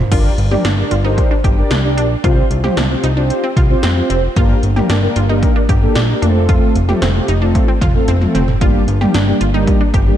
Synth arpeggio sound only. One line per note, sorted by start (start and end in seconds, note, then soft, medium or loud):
0.12 0.31 F4 medium
0.51 0.61 G4 medium
0.65 0.84 D4 medium
0.91 1.01 F4 medium
1.05 1.24 D#4 medium
1.31 1.41 D4 medium
1.44 1.64 G4 medium
1.71 1.90 D4 medium
1.97 2.17 D4 medium
2.24 2.43 F4 medium
2.64 2.74 G4 medium
2.77 2.96 D4 medium
3.04 3.13 D#4 medium
3.17 3.36 D4 medium
3.44 3.53 C4 medium
3.57 3.76 F4 medium
3.83 4.03 C4 medium
4.10 4.29 C4 medium
4.37 4.56 F4 medium
4.76 4.86 G4 medium
4.90 5.09 D4 medium
5.16 5.26 F4 medium
5.29 5.49 D#4 medium
5.56 5.66 D4 medium
5.69 5.89 G4 medium
5.96 6.15 D4 medium
6.22 6.42 D4 medium
6.49 6.68 F4 medium
6.89 6.98 G4 medium
7.02 7.21 C4 medium
7.28 7.38 D#4 medium
7.42 7.61 D4 medium
7.68 7.78 C4 medium
7.82 8.01 F4 medium
8.08 8.28 C4 medium
8.35 8.54 C4 medium
8.61 8.81 F4 medium
9.01 9.11 G4 medium
9.14 9.34 D4 medium
9.41 9.51 F4 medium
9.54 9.74 D#4 medium
9.81 9.90 D4 medium
9.94 10.13 G4 medium